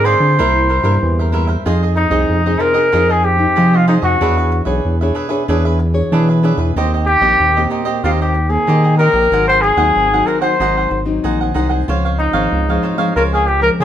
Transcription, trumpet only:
0.05 C5
1.96 D#4
2.61 A#4
3.11 G#4
3.25 G4
3.76 F4
3.88 D#4
4.03 F#4
7.06 G4
8.04 F4
8.21 G4
8.50 G#4
8.98 A#4
9.48 C5
9.62 G#4
10.27 A#4
10.41 C5
12.19 D#4
13.16 A#4
13.34 G#4
13.47 G4
13.62 A#4
13.81 G#4

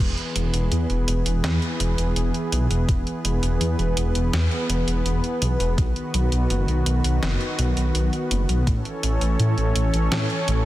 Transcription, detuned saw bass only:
0.00 E1
0.36 E1
0.54 E1
0.72 E2
0.90 E1
1.08 E1
1.26 E1
1.44 E2
1.80 E1
1.98 E1
2.16 E1
2.52 B1
2.70 E1
2.89 E1
3.25 E1
3.43 E1
3.61 E2
3.79 E1
3.97 E1
4.15 E1
4.33 E2
4.69 E1
4.87 E1
5.05 E1
5.42 B1
5.60 E1
5.78 B1
6.14 B1
6.32 B1
6.50 F#1
6.68 B1
6.86 B1
7.05 B1
7.23 F#1
7.59 B1
7.77 B1
7.95 B1
8.31 F#1
8.49 B1
8.67 A1
9.03 A1
9.22 A1
9.40 A2
9.58 A1
9.76 A1
9.94 A1
10.12 A2
10.48 A1

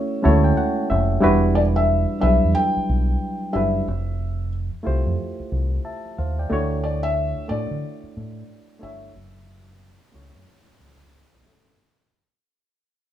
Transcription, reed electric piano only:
Already playing: A3 C#4 E4 F#4 C#5
0.22 G#3 C#4 E4 F#4 C#5 A5
0.28 A3
0.44 G5
0.57 F#5
0.90 E5
1.20 G3 D4 E4 F#4 B4
2.20 F#3 D4 E4 B4
2.26 G3
3.53 G3 D4 E4 F#4 B4
4.83 A3 E4 F4 G4 C5
5.85 E5 A5
6.18 C5 F5
6.39 D5 G5
6.50 A3 D4 E4 F#4 C#5
7.48 A3 D4 E4 F#4 D5
8.79 A3 D4 E4 F#4 C#5
10.12 A3 C#4 E4 F#4 C#5
11.43 A3 C#4 E4 F#4
11.47 A4

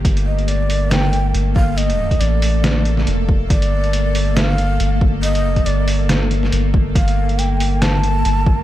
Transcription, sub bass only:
0.05 G1
1.34 G1
2.21 A1
3.07 F1
3.50 G1
4.80 G1
5.40 F#1
5.66 G1
6.52 G1
6.95 G1
8.25 G1

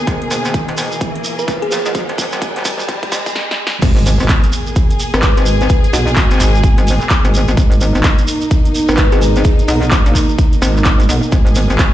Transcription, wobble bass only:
0.07 G#1
0.31 G#1
0.45 G#1
0.68 G#1
0.78 G#1
1.48 F#1
1.86 B1
2.09 G#1
2.33 G#1
2.65 G#1
2.88 G#1
3.12 G#1
3.82 G#1
4.20 G#1
4.29 G#1
5.14 G#1
5.37 G#1
5.93 B1
6.17 G#1
6.31 G#1
6.78 G#1
7.25 G#1
7.48 G#1
7.57 G#1
7.95 G#1
8.04 G#1
8.89 G#1
9.12 G#1
9.68 B1
9.92 G#1
10.06 A#1
10.62 G#1
10.85 G#1
11.09 B1
11.32 G#1
11.70 G#1
11.79 G#1

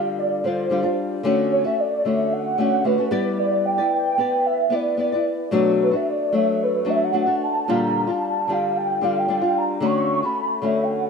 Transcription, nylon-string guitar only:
Already playing: D3 G3 D4 F4
0.44 D3 G3 D4 F4
0.70 D3 G3 D4 F4
0.83 G3 D4 F4
1.23 D3 A3 C#4 F#4
1.64 A3 C#4 F#4
2.05 D3 A3 C#4 F#4
2.58 D3 A3 C#4 F#4
2.84 D3 A3 C#4 F#4
2.98 A3 C#4 F#4
3.11 G3 B3 E4 B4 D5
3.78 E4 B4 D5
4.18 B3 E4 B4 D5
4.70 B3 E4 B4 D5
4.97 B3 E4 B4 D5
5.12 E4 B4 D5
5.51 B2 F#3 A3 D4 F#4
5.91 A3 D4 F#4
6.32 F#3 A3 D4 F#4
6.85 F#3 A3 D4 F#4
7.12 F#3 A3 D4 F#4
7.26 A3 D4 F#4
7.68 A#2 D3 G3 D4 F4
8.07 G3 D4 F4
8.48 D3 G3 D4 F4
9.01 D3 G3 D4 F4
9.28 D3 G3 D4 F4
9.41 G3 D4 F4
9.80 D3 A3 C#4 F#4
10.23 A3 C#4 F#4
10.62 D3 A3 C#4 F#4

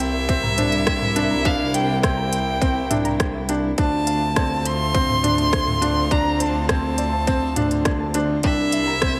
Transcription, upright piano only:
Already playing: C4
0.29 C4
0.58 D4
1.16 D4
1.45 D4
2.03 C4
2.62 C4
2.91 D4
3.49 D4
3.78 D4
4.36 C4
4.95 C4
5.24 D4
5.82 D4
6.12 D4
6.69 C4
7.27 C4
7.57 D4
8.15 D4
8.44 D4
9.02 C4

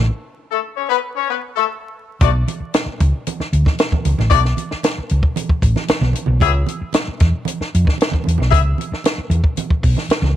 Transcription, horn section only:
0.51 A3 A4
0.77 C#4 C#5
0.89 B3 B4
1.16 C#4 C#5
1.30 B3 B4
1.56 A3 A4
2.21 A3 F#4 D5
4.30 A3 F#4 D5
6.42 B3 G#4 E5
8.51 B3 G#4 E5

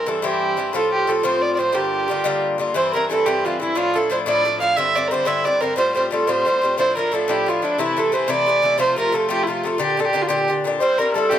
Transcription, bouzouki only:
0.06 G2 E3 C4 E4
0.22 G2 E3 C4 E4
0.57 G2 E3 C4 E4
0.73 A2 F3 C4 F4
1.07 A2 F3 C4 F4
1.23 A2 F3 C4 F4
1.57 A2 F3 C4 F4
1.72 G2 D3 A#3 F4
2.08 G2 D3 A#3 F4
2.24 G2 D3 A#3 F4
2.58 G2 D3 A#3 F4
2.74 G2 E3 C4 E4
2.93 G2 E3 C4 E4
3.10 G2 E3 C4 E4
3.26 G2 E3 C4 E4
3.45 G2 E3 C4 E4
3.60 G2 E3 C4 E4
3.75 A2 F3 D4 E4
3.94 A2 F3 D4 E4
4.10 A2 F3 D4 E4
4.26 A2 F3 D4 E4
4.45 A2 F3 D4 E4
4.60 A2 F3 D4 E4
4.77 G2 D3 C4 E4
4.95 G2 D3 C4 E4
5.11 G2 D3 C4 E4
5.25 G2 D3 C4 E4
5.44 G2 D3 C4 E4
5.61 G2 D3 C4 E4
5.76 A2 G3 C4 F4
5.95 A2 G3 C4 F4
6.11 A2 G3 C4 F4
6.27 A2 G3 C4 F4
6.45 A2 G3 C4 F4
6.62 A2 G3 C4 F4
6.78 A2 F3 D4 E4
6.96 A2 F3 D4 E4
7.12 A2 F3 D4 E4
7.28 A2 F3 D4 E4
7.46 A2 F3 D4 E4
7.62 A2 F3 D4 E4
7.78 C3 E3 A3 E4
7.97 C3 E3 A3 E4
8.12 C3 E3 A3 E4
8.28 C3 E3 A3 E4
8.46 C3 E3 A3 E4
8.62 C3 E3 A3 E4
8.78 C3 F3 A3 F4
8.96 C3 F3 A3 F4
9.12 C3 F3 A3 F4
9.29 C3 F3 A3 F4
9.47 C3 F3 A3 F4
9.64 C3 F3 A3 F4
9.78 A#2 D3 D4 G4
9.97 A#2 D3 D4 G4
10.13 A#2 D3 D4 G4
10.29 A#2 D3 D4 G4
10.48 A#2 D3 D4 G4
10.64 A#2 D3 D4 G4
10.80 G2 G3 C4 E4
10.98 G2 G3 C4 E4
11.14 G2 G3 C4 E4
11.31 G2 G3 C4 E4

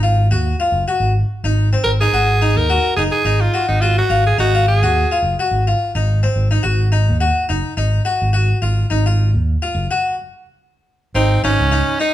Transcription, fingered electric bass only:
Already playing: G#1
0.32 D#2
0.72 F#1
1.00 G#1
1.44 G#1
1.85 G#1
2.13 G#1
2.56 D#2
2.97 F#1
3.25 G#1
3.69 G#1
4.10 G#1
4.38 G#1
4.82 D#2
5.22 F#1
5.51 G#1
5.95 G#1
6.36 G#1
6.64 G#1
7.09 D#2
7.50 F#1
7.77 G#1
8.22 G#1
8.62 G#1
8.91 G#1
9.34 D#2
9.75 F#1
11.15 G#1
11.43 G#1
11.60 C#2

